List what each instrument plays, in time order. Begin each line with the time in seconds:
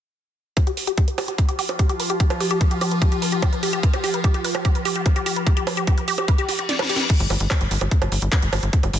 0.57 ambient pad F3 F4, synth arpeggio sound G4, kick, closed hi-hat, high bongo
0.67 synth arpeggio sound G4, closed hi-hat
0.77 synth arpeggio sound B4, open hi-hat
0.87 synth arpeggio sound G4, closed hi-hat
0.98 synth arpeggio sound G4, kick, closed hi-hat
1.08 synth arpeggio sound B4, closed hi-hat
1.18 synth arpeggio sound G4, open hi-hat, high bongo
1.28 synth arpeggio sound G4, closed hi-hat
1.38 synth arpeggio sound B4, kick, closed hi-hat
1.49 synth arpeggio sound G4, closed hi-hat
1.59 synth arpeggio sound G4, open hi-hat
1.69 synth arpeggio sound B4, closed hi-hat, high bongo
1.79 synth arpeggio sound G4, kick, closed hi-hat
1.89 synth arpeggio sound G4, closed hi-hat
2.00 synth arpeggio sound B4, open hi-hat
2.10 synth arpeggio sound G4, closed hi-hat
2.20 synth arpeggio sound G4, kick, closed hi-hat
2.30 synth arpeggio sound B4, closed hi-hat, high bongo
2.40 synth arpeggio sound G4, open hi-hat
2.51 synth arpeggio sound G4, closed hi-hat
2.61 synth arpeggio sound B4, kick, closed hi-hat
2.71 synth arpeggio sound G4, closed hi-hat
2.81 synth arpeggio sound G4, open hi-hat, high bongo
2.91 synth arpeggio sound B4, closed hi-hat
3.02 synth arpeggio sound G4, kick, closed hi-hat
3.12 synth arpeggio sound G4, closed hi-hat
3.22 synth arpeggio sound B4, open hi-hat
3.32 synth arpeggio sound G4, closed hi-hat
3.42 synth arpeggio sound G4, kick, closed hi-hat, high bongo
3.53 synth arpeggio sound B4, closed hi-hat
3.63 synth arpeggio sound G4, open hi-hat
3.73 synth arpeggio sound G4, closed hi-hat
3.83 synth arpeggio sound B4, kick, closed hi-hat
3.93 synth arpeggio sound G4, closed hi-hat, high bongo
4.04 synth arpeggio sound G4, open hi-hat
4.14 synth arpeggio sound B4, closed hi-hat
4.24 synth arpeggio sound G4, kick, closed hi-hat
4.34 synth arpeggio sound G4, closed hi-hat
4.44 synth arpeggio sound B4, open hi-hat
4.55 synth arpeggio sound G4, closed hi-hat, high bongo
4.65 synth arpeggio sound G4, kick, closed hi-hat
4.75 synth arpeggio sound B4, closed hi-hat
4.85 synth arpeggio sound G4, open hi-hat
4.96 synth arpeggio sound G4, closed hi-hat
5.06 synth arpeggio sound B4, kick, closed hi-hat, high bongo
5.16 synth arpeggio sound G4, closed hi-hat
5.26 synth arpeggio sound G4, open hi-hat
5.36 synth arpeggio sound B4, closed hi-hat
5.47 synth arpeggio sound G4, kick, closed hi-hat
5.57 synth arpeggio sound G4, closed hi-hat
5.67 synth arpeggio sound B4, open hi-hat, high bongo
5.77 synth arpeggio sound G4, closed hi-hat
5.87 synth arpeggio sound G4, kick, closed hi-hat
5.98 synth arpeggio sound B4, closed hi-hat
6.08 synth arpeggio sound G4, open hi-hat
6.18 synth arpeggio sound G4, closed hi-hat, high bongo
6.28 synth arpeggio sound B4, kick, closed hi-hat, reverse cymbal
6.38 synth arpeggio sound G4, closed hi-hat
6.49 synth arpeggio sound G4, open hi-hat
6.59 synth arpeggio sound G4, closed hi-hat
6.69 synth arpeggio sound D5, snare, closed hi-hat
6.79 synth arpeggio sound B4, snare, closed hi-hat, high bongo
6.89 synth arpeggio sound G4, open hi-hat
6.96 synth arpeggio sound B4, snare, closed hi-hat
7.10 kick, closed hi-hat, crash
7.20 analog synth bass G1, closed hi-hat
7.30 analog synth bass G1, open hi-hat, high bongo
7.40 analog synth bass G1, closed hi-hat
7.51 kick, clap, closed hi-hat, high bongo
7.61 analog synth bass G1, closed hi-hat
7.71 analog synth bass G1, open hi-hat
7.81 analog synth bass G1, closed hi-hat, high bongo
7.91 kick, closed hi-hat
8.02 analog synth bass G1, closed hi-hat, high bongo
8.12 analog synth bass G1, open hi-hat
8.22 analog synth bass G1, closed hi-hat
8.32 kick, clap, closed hi-hat, high bongo
8.42 analog synth bass G1, closed hi-hat
8.53 analog synth bass G1, open hi-hat, high bongo
8.63 analog synth bass G1, closed hi-hat
8.73 kick, closed hi-hat
8.83 analog synth bass G1, closed hi-hat, high bongo
8.93 analog synth bass G1, open hi-hat